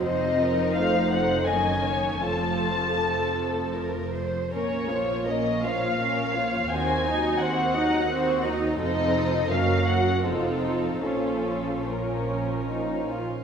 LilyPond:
<<
  \new Staff \with { instrumentName = "Violin section" } { \time 3/4 \key bes \minor \tempo 4 = 81 ees''4 f''8 ges''8 aes''4 | a''2 r4 | des''4 ees''8 f''4. | aes''4 ges''4. r8 |
ees''4 f''8 ges''8 a'4 | a'4 bes'4. r8 | }
  \new Staff \with { instrumentName = "Violin section" } { \time 3/4 \key bes \minor << { c''8 bes'8 c''4 ees''8 des''8 | a'4 a'4 bes'8 c''8 | bes'8 des''8 bes'8 des''8 bes'8 des''8 | c''8 ees''8 c''8 ees''8 c''8 ees''8 |
a'4 bes'4 f'4 | f'4 des'4 ees'8 f'8 | } \\ { ees'2 des'4 | f'4 r2 | des'8 f'8 des'8 f'8 des'8 f'8 | ges'8 ees'8 ges'8 ees'8 ges'8 ees'8 |
ees'4 des'4 ees'4 | des'4 r2 | } >> }
  \new Staff \with { instrumentName = "Viola section" } { \time 3/4 \key bes \minor << { c'4 a4 bes4 | a2~ a8. r16 | des'8 bes8 des'8 bes8 des'8 bes8 | c'8 ees'8 c'8 ees'8 c'8 ees'8 |
c'4 bes4 c'4 | des'4 des'4. r8 | } \\ { f2 ees4 | f2~ f8. r16 | bes8 f8 bes8 f8 bes8 f8 | ees8 ges8 ees8 ges8 ees8 ges8 |
f4 ges4 f4 | f4 f4. r8 | } >> }
  \new Staff \with { instrumentName = "Cello section" } { \clef bass \time 3/4 \key bes \minor f,2 ges,4 | f,2~ f,8. r16 | bes,2. | ees,2. |
f,4 ges,4 f,4 | bes,2~ bes,8 r8 | }
  \new Staff \with { instrumentName = "Double bass section" } { \clef bass \time 3/4 \key bes \minor f,,2 ges,,4 | f,,2~ f,,8. r16 | bes,,2. | ees,2. |
f,,4 ges,,4 f,,4 | bes,,2~ bes,,8 r8 | }
>>